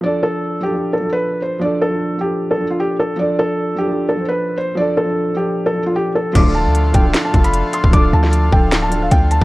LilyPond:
<<
  \new Staff \with { instrumentName = "Felt piano" } { \time 4/4 \key d \dorian \tempo 4 = 152 d''8 a'4 g'8. a'8 b'8. c''8 | d''8 a'4 g'8. a'8 f'16 g'8 a'8 | d''8 a'4 g'8. a'8 b'8. c''8 | d''8 a'4 g'8. a'8 f'16 g'8 a'8 |
d'''8 a''4 g''8. a''8 b''8. c'''8 | d'''8 a''4 g''8. a''8 f''16 g''8 a''8 | }
  \new Staff \with { instrumentName = "Grand piano" } { \time 4/4 \key d \dorian <f d' a'>4~ <f d' a'>16 r16 <f d' a'>16 <f d' a'>8 r16 <f d' a'>4~ <f d' a'>16 r16 | <f d' a'>8 r16 <f d' a'>8 r16 <f d' a'>8. r16 <f d' a'>4~ <f d' a'>16 r16 | <f d' a'>4~ <f d' a'>16 r16 <f d' a'>16 <f d' a'>8 r16 <f d' c''>4~ <f d' c''>16 r16 | <f d' a'>8 r16 <f d' a'>8 r16 <f d' a'>8. r16 <f d' a'>4~ <f d' a'>16 r16 |
<f d' a'>4~ <f d' a'>16 r16 <f d' a'>16 <f d'>8 r16 <f d' a'>4~ <f d' a'>16 r16 | <f d' a'>8 r16 <f d' a'>8 r16 <f d' a'>8. r16 <f d' a'>4~ <f d' a'>16 r16 | }
  \new Staff \with { instrumentName = "Accordion" } { \time 4/4 \key d \dorian r1 | r1 | r1 | r1 |
<d a f'>1~ | <d a f'>1 | }
  \new Staff \with { instrumentName = "String section" } { \clef bass \time 4/4 \key d \dorian r1 | r1 | r1 | r1 |
<d, a, f>4 r2. | r1 | }
  \new Staff \with { instrumentName = "808-style bass" } { \clef bass \time 4/4 \key d \dorian r1 | r1 | r1 | r1 |
d,,8. d,8. d,,8 r8 f,,8. r8 d,,16 | d,,8 d,4 d,,4. d,8. r16 | }
  \new DrumStaff \with { instrumentName = "Drums" } \drummode { \time 4/4 r4 r4 r4 r4 | r4 r4 r4 r4 | r4 r4 r4 r4 | r4 r4 r4 r4 |
<cymc hh bd>4 hh8 <hh bd>8 <hc hh sn>8 <hh bd>16 hh16 hh8 hh16 bd16 | <hh bd>8. sn16 hh8 bd8 <hc hh sn>8 hh8 <hh bd>8 hh8 | }
>>